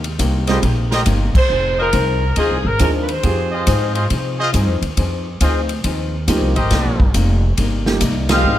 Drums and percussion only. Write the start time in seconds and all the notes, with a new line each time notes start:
0.04 ride
0.19 kick, hi-hat pedal, ride
0.47 snare, ride
0.63 kick, ride
0.92 snare
1.06 kick, hi-hat pedal, ride
1.35 kick, crash
1.93 kick, hi-hat pedal, ride
2.36 kick, ride
2.79 kick, hi-hat pedal, ride
3.08 ride
3.23 kick, ride
3.67 kick, hi-hat pedal, ride
3.95 ride
4.10 kick, ride
4.54 kick, hi-hat pedal, ride
4.82 ride
4.97 kick, ride
5.41 kick, hi-hat pedal, ride
5.69 ride
5.84 kick, ride
6.28 kick, hi-hat pedal, ride
6.56 ride
6.71 kick, snare, ride
7.00 kick
7.14 kick, hi-hat pedal, ride
7.57 kick, ride
7.86 snare
8.01 kick, hi-hat pedal, ride
8.29 snare, ride